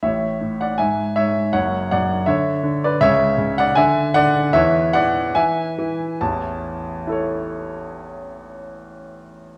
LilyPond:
<<
  \new Staff \with { instrumentName = "Grand piano" } { \time 2/4 \key a \major \tempo 4 = 76 << { <cis'' e''>8. <d'' fis''>16 <e'' gis''>8 <cis'' e''>8 | <cis'' fis''>8 <d'' fis''>8 <cis'' e''>8. <b' d''>16 | <cis'' e''>8. <d'' fis''>16 <e'' gis''>8 <d'' fis''>8 | <cis'' e''>8 <d'' fis''>8 <e'' gis''>4 |
a''2~ | a''2 | } \\ { r2 | r2 | r2 | r2 |
r4 <e' a' cis''>4~ | <e' a' cis''>2 | } >> }
  \new Staff \with { instrumentName = "Grand piano" } { \clef bass \time 2/4 \key a \major <a,, a,>8 a,8 gis,8 gis,8 | <fis,, fis,>8 fis,8 d8 d8 | <cis, cis>8 cis8 d8 d8 | <e, e>8 e8 e8 e8 |
<a,, e,>2~ | <a,, e,>2 | }
>>